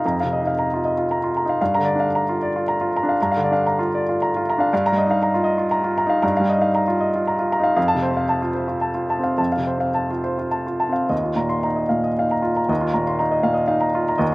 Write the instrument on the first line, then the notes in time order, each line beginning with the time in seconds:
grand piano
Already playing: D#4 F5
0.05 F2 A#5
0.20 C3 F5
0.33 D#5
0.42 D#4
0.47 F5
0.59 A#5
0.74 F4
0.85 D#5
0.98 F4
1.11 A#5
1.24 F4
1.37 A#5
1.45 D#4 F5
1.61 G2 F5
1.74 D3 A#5
1.85 D5
1.95 D4
2.00 F5
2.15 A#5
2.29 F4
2.42 D5
2.56 F4
2.68 A#5
2.81 F4
2.96 A#5
3.03 D4
3.09 F5
3.22 G2 A#5
3.32 F5
3.36 D3
3.44 D5
3.51 D4 F5
3.66 A#5
3.79 F4
3.95 D5
4.09 F4
4.22 A#5
4.36 F4
4.50 A#5
4.58 D4 F5
4.73 G2 F5
4.86 A#5
4.92 G3
4.98 D#5
5.07 D#4 F5
5.23 A#5
5.34 F4
5.44 D#5
5.58 F4
5.71 A#5
5.84 F4
5.98 A#5
6.06 D#4 F5
6.22 G2 A#5
6.37 G3 F5
6.49 D#5
6.58 D#4 F5
6.75 A#5
6.88 F4
7.01 D#5
7.15 F4
7.27 A#5
7.39 F4
7.52 A#5
7.59 D#4 F5
7.76 F2 F5
7.88 A5
7.95 C3
8.02 C5
8.11 C4
8.17 F5
8.29 A5
8.42 F4
8.54 C5
8.68 F4
8.81 A5
8.94 F4
9.10 A5
9.19 C4
9.23 F5
9.38 F2 A5
9.52 F5
9.57 C3
9.67 C5
9.78 C4 F5
9.94 A5
10.10 F4
10.24 C5
10.39 F4
10.51 A5
10.67 F4
10.80 A5
10.89 C4 F5
11.09 D#2 D#5
11.23 F4
11.35 A#2 A#5
11.49 C6
11.63 D#4 A#5
11.76 D#5
11.89 A#2 F5
12.04 D#5
12.19 D#4 F5
12.31 A#5
12.42 F4
12.56 A#5
12.69 D#2 D#5
12.81 F4
12.93 A#2 A#5
13.07 C6
13.19 D#4 A#5
13.31 D#5
13.43 A#2 F5
13.54 D#5
13.67 D#4 F5
13.81 A#5
13.95 F4
14.08 A#5
14.18 D#2 D#5